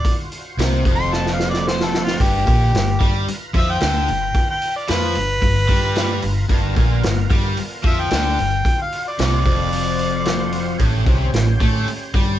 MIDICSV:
0, 0, Header, 1, 8, 480
1, 0, Start_track
1, 0, Tempo, 537153
1, 51, Time_signature, 4, 2, 24, 8
1, 11073, End_track
2, 0, Start_track
2, 0, Title_t, "Harmonica"
2, 0, Program_c, 0, 22
2, 0, Note_on_c, 0, 74, 90
2, 125, Note_off_c, 0, 74, 0
2, 855, Note_on_c, 0, 84, 96
2, 1015, Note_on_c, 0, 81, 84
2, 1029, Note_off_c, 0, 84, 0
2, 1169, Note_off_c, 0, 81, 0
2, 1190, Note_on_c, 0, 77, 85
2, 1336, Note_off_c, 0, 77, 0
2, 1340, Note_on_c, 0, 74, 82
2, 1498, Note_on_c, 0, 72, 89
2, 1511, Note_off_c, 0, 74, 0
2, 1644, Note_on_c, 0, 69, 82
2, 1658, Note_off_c, 0, 72, 0
2, 1803, Note_off_c, 0, 69, 0
2, 1822, Note_on_c, 0, 65, 88
2, 1979, Note_on_c, 0, 67, 99
2, 1992, Note_off_c, 0, 65, 0
2, 2907, Note_off_c, 0, 67, 0
2, 3192, Note_on_c, 0, 76, 94
2, 3311, Note_on_c, 0, 79, 88
2, 3324, Note_off_c, 0, 76, 0
2, 4000, Note_off_c, 0, 79, 0
2, 4023, Note_on_c, 0, 79, 98
2, 4251, Note_off_c, 0, 79, 0
2, 4255, Note_on_c, 0, 74, 88
2, 4380, Note_on_c, 0, 71, 122
2, 4394, Note_off_c, 0, 74, 0
2, 5781, Note_off_c, 0, 71, 0
2, 7031, Note_on_c, 0, 76, 99
2, 7151, Note_on_c, 0, 79, 90
2, 7165, Note_off_c, 0, 76, 0
2, 7842, Note_off_c, 0, 79, 0
2, 7879, Note_on_c, 0, 77, 92
2, 8100, Note_off_c, 0, 77, 0
2, 8112, Note_on_c, 0, 74, 82
2, 8215, Note_off_c, 0, 74, 0
2, 8246, Note_on_c, 0, 74, 100
2, 9634, Note_off_c, 0, 74, 0
2, 11073, End_track
3, 0, Start_track
3, 0, Title_t, "Tonewheel organ"
3, 0, Program_c, 1, 16
3, 0, Note_on_c, 1, 65, 73
3, 0, Note_on_c, 1, 66, 70
3, 0, Note_on_c, 1, 72, 72
3, 1937, Note_off_c, 1, 72, 0
3, 1940, Note_off_c, 1, 65, 0
3, 1940, Note_off_c, 1, 66, 0
3, 1981, Note_on_c, 1, 72, 61
3, 1982, Note_on_c, 1, 71, 59
3, 1985, Note_on_c, 1, 66, 60
3, 2128, Note_off_c, 1, 71, 0
3, 2128, Note_on_c, 1, 82, 65
3, 2132, Note_on_c, 1, 65, 70
3, 2136, Note_off_c, 1, 72, 0
3, 2138, Note_off_c, 1, 66, 0
3, 2139, Note_on_c, 1, 71, 64
3, 5776, Note_off_c, 1, 82, 0
3, 5778, Note_off_c, 1, 65, 0
3, 5781, Note_off_c, 1, 71, 0
3, 5808, Note_on_c, 1, 59, 69
3, 5816, Note_on_c, 1, 70, 65
3, 5818, Note_on_c, 1, 65, 71
3, 7712, Note_off_c, 1, 59, 0
3, 7716, Note_off_c, 1, 70, 0
3, 7717, Note_off_c, 1, 65, 0
3, 7740, Note_on_c, 1, 66, 66
3, 7751, Note_on_c, 1, 72, 65
3, 7752, Note_on_c, 1, 65, 65
3, 9624, Note_off_c, 1, 72, 0
3, 9635, Note_on_c, 1, 61, 64
3, 9635, Note_on_c, 1, 72, 66
3, 9638, Note_off_c, 1, 66, 0
3, 9638, Note_on_c, 1, 67, 70
3, 9644, Note_off_c, 1, 65, 0
3, 11073, Note_off_c, 1, 61, 0
3, 11073, Note_off_c, 1, 67, 0
3, 11073, Note_off_c, 1, 72, 0
3, 11073, End_track
4, 0, Start_track
4, 0, Title_t, "Overdriven electric guitar"
4, 0, Program_c, 2, 29
4, 527, Note_on_c, 2, 48, 101
4, 762, Note_off_c, 2, 48, 0
4, 768, Note_on_c, 2, 41, 95
4, 1963, Note_off_c, 2, 41, 0
4, 1972, Note_on_c, 2, 43, 96
4, 2199, Note_off_c, 2, 43, 0
4, 2202, Note_on_c, 2, 46, 90
4, 2440, Note_off_c, 2, 46, 0
4, 2450, Note_on_c, 2, 43, 66
4, 2643, Note_off_c, 2, 43, 0
4, 2684, Note_on_c, 2, 55, 93
4, 2921, Note_off_c, 2, 55, 0
4, 3172, Note_on_c, 2, 53, 97
4, 3405, Note_off_c, 2, 53, 0
4, 3415, Note_on_c, 2, 50, 91
4, 3641, Note_on_c, 2, 43, 60
4, 3647, Note_off_c, 2, 50, 0
4, 3839, Note_off_c, 2, 43, 0
4, 4367, Note_on_c, 2, 53, 100
4, 4595, Note_on_c, 2, 43, 67
4, 4602, Note_off_c, 2, 53, 0
4, 4796, Note_off_c, 2, 43, 0
4, 4844, Note_on_c, 2, 43, 73
4, 5041, Note_off_c, 2, 43, 0
4, 5079, Note_on_c, 2, 55, 99
4, 5559, Note_off_c, 2, 55, 0
4, 5563, Note_on_c, 2, 43, 66
4, 5760, Note_off_c, 2, 43, 0
4, 5800, Note_on_c, 2, 43, 90
4, 6040, Note_off_c, 2, 43, 0
4, 6046, Note_on_c, 2, 46, 84
4, 6283, Note_off_c, 2, 46, 0
4, 6296, Note_on_c, 2, 43, 68
4, 6487, Note_off_c, 2, 43, 0
4, 6531, Note_on_c, 2, 55, 89
4, 6765, Note_off_c, 2, 55, 0
4, 7004, Note_on_c, 2, 53, 101
4, 7242, Note_off_c, 2, 53, 0
4, 7253, Note_on_c, 2, 50, 90
4, 7486, Note_off_c, 2, 50, 0
4, 7493, Note_on_c, 2, 43, 62
4, 7685, Note_off_c, 2, 43, 0
4, 8213, Note_on_c, 2, 48, 95
4, 8446, Note_off_c, 2, 48, 0
4, 8450, Note_on_c, 2, 41, 94
4, 9645, Note_off_c, 2, 41, 0
4, 9649, Note_on_c, 2, 45, 100
4, 9884, Note_off_c, 2, 45, 0
4, 9890, Note_on_c, 2, 48, 84
4, 10120, Note_off_c, 2, 48, 0
4, 10124, Note_on_c, 2, 45, 72
4, 10321, Note_off_c, 2, 45, 0
4, 10372, Note_on_c, 2, 57, 95
4, 10605, Note_off_c, 2, 57, 0
4, 10858, Note_on_c, 2, 55, 94
4, 11073, Note_off_c, 2, 55, 0
4, 11073, End_track
5, 0, Start_track
5, 0, Title_t, "Fingered electric bass"
5, 0, Program_c, 3, 33
5, 512, Note_on_c, 3, 36, 90
5, 744, Note_off_c, 3, 36, 0
5, 756, Note_on_c, 3, 29, 84
5, 1928, Note_off_c, 3, 29, 0
5, 1965, Note_on_c, 3, 31, 90
5, 2192, Note_off_c, 3, 31, 0
5, 2206, Note_on_c, 3, 34, 96
5, 2432, Note_off_c, 3, 34, 0
5, 2441, Note_on_c, 3, 31, 75
5, 2669, Note_off_c, 3, 31, 0
5, 2688, Note_on_c, 3, 43, 89
5, 2913, Note_off_c, 3, 43, 0
5, 3159, Note_on_c, 3, 41, 92
5, 3388, Note_off_c, 3, 41, 0
5, 3413, Note_on_c, 3, 38, 91
5, 3636, Note_off_c, 3, 38, 0
5, 3658, Note_on_c, 3, 31, 72
5, 3878, Note_off_c, 3, 31, 0
5, 4372, Note_on_c, 3, 41, 85
5, 4595, Note_off_c, 3, 41, 0
5, 4619, Note_on_c, 3, 31, 73
5, 4832, Note_off_c, 3, 31, 0
5, 4837, Note_on_c, 3, 31, 70
5, 5068, Note_off_c, 3, 31, 0
5, 5084, Note_on_c, 3, 43, 89
5, 5535, Note_off_c, 3, 43, 0
5, 5572, Note_on_c, 3, 31, 73
5, 5792, Note_off_c, 3, 31, 0
5, 5797, Note_on_c, 3, 31, 93
5, 6028, Note_off_c, 3, 31, 0
5, 6040, Note_on_c, 3, 34, 94
5, 6270, Note_off_c, 3, 34, 0
5, 6291, Note_on_c, 3, 31, 76
5, 6515, Note_off_c, 3, 31, 0
5, 6528, Note_on_c, 3, 43, 87
5, 6754, Note_off_c, 3, 43, 0
5, 7009, Note_on_c, 3, 41, 88
5, 7235, Note_off_c, 3, 41, 0
5, 7255, Note_on_c, 3, 38, 86
5, 7478, Note_off_c, 3, 38, 0
5, 7506, Note_on_c, 3, 31, 76
5, 7724, Note_off_c, 3, 31, 0
5, 8213, Note_on_c, 3, 36, 93
5, 8437, Note_off_c, 3, 36, 0
5, 8446, Note_on_c, 3, 29, 83
5, 9614, Note_off_c, 3, 29, 0
5, 9646, Note_on_c, 3, 33, 90
5, 9873, Note_off_c, 3, 33, 0
5, 9888, Note_on_c, 3, 36, 88
5, 10114, Note_off_c, 3, 36, 0
5, 10131, Note_on_c, 3, 33, 79
5, 10355, Note_off_c, 3, 33, 0
5, 10367, Note_on_c, 3, 45, 80
5, 10593, Note_off_c, 3, 45, 0
5, 10847, Note_on_c, 3, 43, 87
5, 11073, Note_off_c, 3, 43, 0
5, 11073, End_track
6, 0, Start_track
6, 0, Title_t, "Muted fingered electric bass strokes"
6, 2928, Note_on_c, 9, 29, 37
6, 3017, Note_off_c, 9, 29, 0
6, 6785, Note_on_c, 9, 29, 38
6, 6874, Note_off_c, 9, 29, 0
6, 10606, Note_on_c, 9, 29, 37
6, 10695, Note_off_c, 9, 29, 0
6, 11073, End_track
7, 0, Start_track
7, 0, Title_t, "Muted overdriven electric guitar strokes"
7, 2936, Note_on_c, 9, 29, 55
7, 3026, Note_off_c, 9, 29, 0
7, 6775, Note_on_c, 9, 29, 58
7, 6864, Note_off_c, 9, 29, 0
7, 10609, Note_on_c, 9, 29, 58
7, 10699, Note_off_c, 9, 29, 0
7, 11073, End_track
8, 0, Start_track
8, 0, Title_t, "Drums"
8, 43, Note_on_c, 9, 36, 89
8, 47, Note_on_c, 9, 46, 64
8, 132, Note_off_c, 9, 36, 0
8, 136, Note_off_c, 9, 46, 0
8, 283, Note_on_c, 9, 46, 48
8, 373, Note_off_c, 9, 46, 0
8, 528, Note_on_c, 9, 46, 66
8, 537, Note_on_c, 9, 38, 97
8, 618, Note_off_c, 9, 46, 0
8, 627, Note_off_c, 9, 38, 0
8, 762, Note_on_c, 9, 36, 103
8, 762, Note_on_c, 9, 46, 49
8, 851, Note_off_c, 9, 46, 0
8, 852, Note_off_c, 9, 36, 0
8, 1008, Note_on_c, 9, 38, 53
8, 1097, Note_off_c, 9, 38, 0
8, 1128, Note_on_c, 9, 38, 50
8, 1218, Note_off_c, 9, 38, 0
8, 1249, Note_on_c, 9, 38, 65
8, 1338, Note_off_c, 9, 38, 0
8, 1375, Note_on_c, 9, 38, 59
8, 1464, Note_off_c, 9, 38, 0
8, 1497, Note_on_c, 9, 38, 77
8, 1586, Note_off_c, 9, 38, 0
8, 1613, Note_on_c, 9, 38, 67
8, 1702, Note_off_c, 9, 38, 0
8, 1734, Note_on_c, 9, 38, 89
8, 1824, Note_off_c, 9, 38, 0
8, 1854, Note_on_c, 9, 38, 82
8, 1943, Note_off_c, 9, 38, 0
8, 1967, Note_on_c, 9, 36, 96
8, 1971, Note_on_c, 9, 46, 69
8, 2057, Note_off_c, 9, 36, 0
8, 2060, Note_off_c, 9, 46, 0
8, 2208, Note_on_c, 9, 36, 100
8, 2213, Note_on_c, 9, 46, 55
8, 2298, Note_off_c, 9, 36, 0
8, 2303, Note_off_c, 9, 46, 0
8, 2454, Note_on_c, 9, 46, 66
8, 2463, Note_on_c, 9, 38, 98
8, 2543, Note_off_c, 9, 46, 0
8, 2552, Note_off_c, 9, 38, 0
8, 2687, Note_on_c, 9, 36, 93
8, 2691, Note_on_c, 9, 46, 53
8, 2776, Note_off_c, 9, 36, 0
8, 2780, Note_off_c, 9, 46, 0
8, 2933, Note_on_c, 9, 46, 65
8, 3023, Note_off_c, 9, 46, 0
8, 3165, Note_on_c, 9, 36, 96
8, 3165, Note_on_c, 9, 46, 51
8, 3254, Note_off_c, 9, 36, 0
8, 3255, Note_off_c, 9, 46, 0
8, 3400, Note_on_c, 9, 46, 69
8, 3409, Note_on_c, 9, 38, 105
8, 3489, Note_off_c, 9, 46, 0
8, 3498, Note_off_c, 9, 38, 0
8, 3648, Note_on_c, 9, 46, 52
8, 3737, Note_off_c, 9, 46, 0
8, 3884, Note_on_c, 9, 36, 94
8, 3885, Note_on_c, 9, 46, 62
8, 3974, Note_off_c, 9, 36, 0
8, 3975, Note_off_c, 9, 46, 0
8, 4125, Note_on_c, 9, 46, 48
8, 4214, Note_off_c, 9, 46, 0
8, 4361, Note_on_c, 9, 46, 60
8, 4370, Note_on_c, 9, 38, 95
8, 4451, Note_off_c, 9, 46, 0
8, 4460, Note_off_c, 9, 38, 0
8, 4605, Note_on_c, 9, 46, 48
8, 4694, Note_off_c, 9, 46, 0
8, 4843, Note_on_c, 9, 36, 79
8, 4845, Note_on_c, 9, 46, 61
8, 4932, Note_off_c, 9, 36, 0
8, 4934, Note_off_c, 9, 46, 0
8, 5083, Note_on_c, 9, 36, 95
8, 5086, Note_on_c, 9, 46, 53
8, 5173, Note_off_c, 9, 36, 0
8, 5175, Note_off_c, 9, 46, 0
8, 5322, Note_on_c, 9, 46, 70
8, 5331, Note_on_c, 9, 38, 104
8, 5412, Note_off_c, 9, 46, 0
8, 5421, Note_off_c, 9, 38, 0
8, 5560, Note_on_c, 9, 46, 50
8, 5649, Note_off_c, 9, 46, 0
8, 5801, Note_on_c, 9, 46, 70
8, 5803, Note_on_c, 9, 36, 91
8, 5890, Note_off_c, 9, 46, 0
8, 5892, Note_off_c, 9, 36, 0
8, 6042, Note_on_c, 9, 46, 52
8, 6045, Note_on_c, 9, 36, 96
8, 6131, Note_off_c, 9, 46, 0
8, 6134, Note_off_c, 9, 36, 0
8, 6284, Note_on_c, 9, 46, 69
8, 6293, Note_on_c, 9, 38, 104
8, 6373, Note_off_c, 9, 46, 0
8, 6382, Note_off_c, 9, 38, 0
8, 6527, Note_on_c, 9, 36, 98
8, 6530, Note_on_c, 9, 46, 58
8, 6616, Note_off_c, 9, 36, 0
8, 6619, Note_off_c, 9, 46, 0
8, 6765, Note_on_c, 9, 46, 73
8, 6854, Note_off_c, 9, 46, 0
8, 7004, Note_on_c, 9, 46, 53
8, 7007, Note_on_c, 9, 36, 96
8, 7094, Note_off_c, 9, 46, 0
8, 7096, Note_off_c, 9, 36, 0
8, 7243, Note_on_c, 9, 46, 68
8, 7252, Note_on_c, 9, 38, 112
8, 7332, Note_off_c, 9, 46, 0
8, 7341, Note_off_c, 9, 38, 0
8, 7495, Note_on_c, 9, 46, 53
8, 7584, Note_off_c, 9, 46, 0
8, 7729, Note_on_c, 9, 36, 91
8, 7735, Note_on_c, 9, 46, 64
8, 7819, Note_off_c, 9, 36, 0
8, 7824, Note_off_c, 9, 46, 0
8, 7975, Note_on_c, 9, 46, 50
8, 8065, Note_off_c, 9, 46, 0
8, 8209, Note_on_c, 9, 46, 65
8, 8218, Note_on_c, 9, 38, 99
8, 8299, Note_off_c, 9, 46, 0
8, 8308, Note_off_c, 9, 38, 0
8, 8450, Note_on_c, 9, 36, 100
8, 8453, Note_on_c, 9, 46, 49
8, 8539, Note_off_c, 9, 36, 0
8, 8543, Note_off_c, 9, 46, 0
8, 8692, Note_on_c, 9, 46, 66
8, 8781, Note_off_c, 9, 46, 0
8, 8927, Note_on_c, 9, 46, 52
8, 9017, Note_off_c, 9, 46, 0
8, 9164, Note_on_c, 9, 46, 73
8, 9172, Note_on_c, 9, 38, 104
8, 9253, Note_off_c, 9, 46, 0
8, 9262, Note_off_c, 9, 38, 0
8, 9404, Note_on_c, 9, 46, 52
8, 9493, Note_off_c, 9, 46, 0
8, 9646, Note_on_c, 9, 46, 64
8, 9649, Note_on_c, 9, 36, 87
8, 9735, Note_off_c, 9, 46, 0
8, 9738, Note_off_c, 9, 36, 0
8, 9887, Note_on_c, 9, 36, 96
8, 9887, Note_on_c, 9, 46, 49
8, 9977, Note_off_c, 9, 36, 0
8, 9977, Note_off_c, 9, 46, 0
8, 10129, Note_on_c, 9, 46, 68
8, 10138, Note_on_c, 9, 38, 98
8, 10219, Note_off_c, 9, 46, 0
8, 10228, Note_off_c, 9, 38, 0
8, 10370, Note_on_c, 9, 36, 99
8, 10373, Note_on_c, 9, 46, 54
8, 10459, Note_off_c, 9, 36, 0
8, 10462, Note_off_c, 9, 46, 0
8, 10614, Note_on_c, 9, 46, 71
8, 10703, Note_off_c, 9, 46, 0
8, 10849, Note_on_c, 9, 36, 100
8, 10850, Note_on_c, 9, 46, 51
8, 10938, Note_off_c, 9, 36, 0
8, 10939, Note_off_c, 9, 46, 0
8, 11073, End_track
0, 0, End_of_file